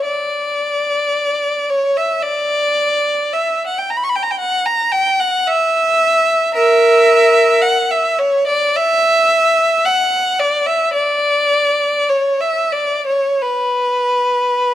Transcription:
0.05 1.66 D5 medium
1.70 1.97 C#5 medium
1.97 2.24 E5 medium
2.23 3.33 D5 medium
3.33 3.66 E5 medium
3.66 3.79 F#5 medium
3.78 3.88 G5 medium
3.90 3.97 A#5 medium
3.97 4.03 B5 medium
4.04 4.10 C#6 medium
4.09 4.16 B5 medium
4.16 4.23 G5 medium
4.23 4.31 A#5 medium
4.31 4.40 G5 medium
4.39 4.66 F#5 medium
4.66 4.93 A#5 medium
4.92 5.19 G5 medium
5.20 5.46 F#5 medium
5.47 6.53 E5 medium
6.54 7.57 A#4 medium
6.54 7.60 E5 medium
7.62 7.89 F#5 medium
7.90 8.18 E5 medium
8.19 8.47 C#5 medium
8.47 8.74 D5 medium
8.76 9.86 E5 medium
9.85 10.39 F#5 medium
10.39 10.66 D5 medium
10.66 10.93 E5 medium
10.93 12.06 D5 medium
12.09 12.40 C#5 medium
12.40 12.72 E5 medium
12.72 13.05 D5 medium
13.06 13.40 C#5 medium
13.42 14.74 B4 medium

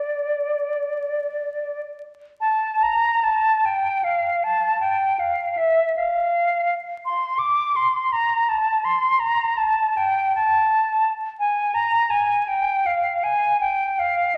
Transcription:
0.00 1.80 D5 medium
2.41 2.84 A5 medium
2.83 3.25 A#5 medium
3.23 3.67 A5 medium
3.65 4.05 G5 medium
4.04 4.45 F5 medium
4.44 4.80 A5 medium
4.80 5.21 G5 medium
5.19 5.59 F5 medium
5.57 5.95 E5 medium
5.96 6.74 F5 medium
7.05 7.40 C6 medium
7.39 7.77 D6 medium
7.76 8.14 C6 medium
8.12 8.50 A#5 medium
8.48 8.86 A5 medium
8.84 9.21 C6 medium
9.19 9.58 A#5 medium
9.57 9.98 A5 medium
9.97 10.34 G5 medium
10.35 11.13 A5 medium
11.39 11.76 G#5 medium
11.74 12.12 A#5 medium
12.10 12.49 G#5 medium
12.48 12.87 G5 medium
12.86 13.25 F5 medium
13.23 13.60 G#5 medium
13.60 14.00 G5 medium
13.99 14.36 F5 medium

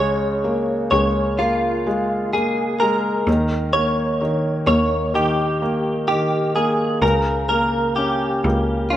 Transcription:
0.00 0.88 C#2 medium
0.00 3.24 C#3 medium
0.00 0.90 G#3 soft
0.00 0.90 C#5 medium
0.44 1.37 A#3 soft
0.91 3.24 C#2 medium
0.91 1.85 G#3 soft
0.91 1.40 C#5 medium
1.39 2.33 A#3 soft
1.39 2.33 F4 medium
1.86 2.80 G#3 soft
2.33 3.25 A#3 soft
2.33 2.82 G#4 medium
2.80 3.27 G#3 soft
2.80 3.70 A#4 medium
3.27 4.64 D#2 medium
3.27 4.20 D#3 medium
3.73 4.67 A#3 soft
3.73 4.66 C#5 medium
4.21 5.13 D#3 soft
4.67 6.99 D#2 medium
4.67 5.61 A#3 soft
4.67 5.15 C#5 medium
5.14 6.08 D#3 soft
5.14 6.07 G4 medium
5.62 6.54 A#3 soft
6.08 7.00 D#3 soft
6.08 6.55 G4 medium
6.55 7.01 A#3 soft
6.55 6.99 G#4 medium
7.02 8.40 C#2 medium
7.02 8.97 C#3 medium
7.02 7.48 A#4 medium
7.49 8.44 A#3 soft
7.49 7.93 A#4 medium
7.96 8.91 C#4 soft
7.96 8.88 G4 medium
8.44 8.97 C#2 medium
8.44 8.97 A#3 soft
8.90 8.97 C#4 soft
8.90 8.97 F4 medium

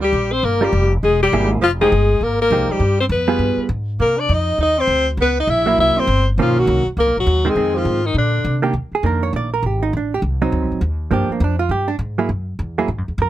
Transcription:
0.00 0.12 D2 medium
0.00 0.34 G3 medium
0.04 0.34 G4 medium
0.13 0.42 A#1 medium
0.32 0.46 C4 medium
0.32 0.46 C5 loud
0.43 0.72 G1 medium
0.43 0.63 A#3 medium
0.43 0.66 A#4 medium
0.61 0.72 G3 medium
0.61 0.91 G3 medium
0.61 0.72 C#4 medium
0.61 0.72 F4 medium
0.61 0.93 G4 medium
0.61 0.72 A#4 medium
0.73 1.02 F1 medium
1.03 1.32 E1 medium
1.03 1.20 G#3 medium
1.03 1.21 G#4 loud
1.23 1.50 G3 medium
1.23 1.50 G4 medium
1.32 1.61 G#1 medium
1.32 1.63 A#3 medium
1.32 1.63 E4 medium
1.32 1.63 G#4 medium
1.62 1.91 F1 medium
1.62 1.70 F3 medium
1.62 1.71 F4 medium
1.81 1.91 F3 medium
1.81 2.25 G#3 medium
1.81 1.91 G#3 medium
1.81 1.91 D#4 medium
1.81 1.92 G4 medium
1.81 2.25 G#4 medium
1.92 2.20 G1 medium
2.21 2.50 G#1 medium
2.21 2.40 A#3 medium
2.21 2.41 A#4 loud
2.41 2.72 A#3 medium
2.41 2.73 A#4 loud
2.51 2.68 C2 loud
2.51 2.81 F3 medium
2.51 2.82 G#3 medium
2.51 2.82 D#4 medium
2.51 2.82 G4 medium
2.69 3.00 G3 medium
2.69 3.00 G4 medium
2.69 muted upright bass stroke soft
2.80 3.09 G2 medium
3.00 3.06 C4 medium
3.00 3.05 C5 medium
3.09 3.38 F2 loud
3.09 3.67 B3 medium
3.09 3.67 B4 medium
3.28 3.67 G3 medium
3.28 3.67 B3 medium
3.28 3.67 F4 medium
3.28 3.68 G#4 medium
3.39 3.57 G2 medium
3.57 muted upright bass stroke soft
3.69 3.98 G#2 medium
4.00 4.29 C3 medium
4.00 4.19 A#3 medium
4.00 4.21 A#4 medium
4.18 4.32 D4 medium
4.18 4.35 D5 medium
4.29 4.58 F2 medium
4.29 4.60 D#4 medium
4.34 4.61 D#5 loud
4.58 4.87 D#2 medium
4.58 4.80 D#4 medium
4.63 4.82 D#5 medium
4.78 5.08 C4 medium
4.78 5.09 C5 loud
4.87 5.17 D2 medium
5.17 5.47 C#2 medium
5.17 5.37 B3 medium
5.22 5.37 B4 loud
5.40 5.51 D#4 medium
5.40 5.52 D#5 loud
5.47 5.77 A#1 medium
5.47 5.79 E4 medium
5.47 5.79 E5 loud
5.66 6.05 F#3 medium
5.66 6.05 A#3 medium
5.66 6.06 E4 medium
5.78 5.95 C2 medium
5.78 5.99 E4 medium
5.78 6.01 E5 loud
5.97 6.26 C4 medium
5.97 6.28 C5 medium
6.07 6.36 G1 loud
6.38 6.66 B1 medium
6.38 6.82 D#3 medium
6.38 6.61 F3 medium
6.38 6.83 A#3 medium
6.38 6.83 C#4 medium
6.42 6.61 F4 medium
6.59 6.87 F#3 medium
6.59 6.87 F#4 loud
6.67 6.84 C2 medium
6.86 muted upright bass stroke soft
6.97 7.06 C#2 medium
6.97 7.15 A#3 medium
6.97 7.15 A#4 loud
7.06 7.16 B1 medium
7.17 7.26 A#1 medium
7.17 7.52 F#3 medium
7.17 7.51 F#4 medium
7.27 7.55 D#2 medium
7.45 7.55 D#3 medium
7.45 7.55 G#3 medium
7.45 7.56 C4 medium
7.50 7.76 G#3 medium
7.50 7.79 G#4 medium
7.56 7.84 F2 medium
7.56 8.00 D#3 medium
7.56 8.00 G#3 medium
7.56 8.01 C4 medium
7.75 8.07 F3 medium
7.75 8.08 F4 medium
7.85 8.14 G#2 medium
8.05 8.15 D#3 medium
8.05 8.16 D#4 medium
8.14 8.43 A#2 medium
8.14 8.60 D3 medium
8.14 8.61 D4 medium
8.45 8.73 C3 medium
8.62 8.73 D#3 medium
8.62 8.73 A#3 medium
8.62 8.73 D4 medium
8.62 8.73 G4 medium
8.73 8.91 D#2 medium
8.92 9.05 G#4 medium
8.92 muted upright bass stroke soft
9.03 9.32 F2 medium
9.03 9.48 D#3 medium
9.03 9.48 A#3 medium
9.03 9.48 D4 medium
9.03 9.23 A#4 medium
9.23 9.34 C#5 medium
9.33 9.62 A#1 medium
9.33 9.53 D5 medium
9.54 9.64 A#4 medium
9.63 9.92 G#1 medium
9.63 9.83 G4 medium
9.83 9.93 D#4 medium
9.93 10.21 A1 medium
9.93 10.13 D4 medium
10.14 10.20 G4 medium
10.22 10.51 C2 medium
10.42 10.80 F#3 medium
10.42 10.80 C4 medium
10.42 10.80 D#4 medium
10.52 10.62 D2 medium
10.62 10.71 C2 medium
10.72 10.80 A1 medium
10.81 11.10 D#2 medium
11.11 11.28 G2 medium
11.11 11.55 F3 medium
11.11 11.31 A#3 medium
11.11 11.43 D4 medium
11.11 11.30 G4 medium
11.29 11.42 A#3 medium
11.29 muted upright bass stroke soft
11.40 11.69 F2 medium
11.40 11.59 D4 medium
11.59 11.70 F4 medium
11.69 11.98 G2 medium
11.69 11.89 G4 medium
11.88 11.95 D4 medium
11.99 12.28 G#2 medium
12.18 12.29 F#3 medium
12.18 12.29 A#3 medium
12.18 12.29 E4 medium
12.18 12.29 G#4 medium
12.29 12.58 F#2 medium
12.59 12.88 E2 medium
12.78 12.88 F#3 medium
12.78 12.88 A#3 medium
12.78 12.89 E4 medium
12.78 12.88 G#4 medium
12.88 12.98 G#2 medium
12.98 13.08 F#2 medium
13.08 13.17 E2 medium
13.18 13.29 F#2 medium
13.18 13.29 A#4 medium

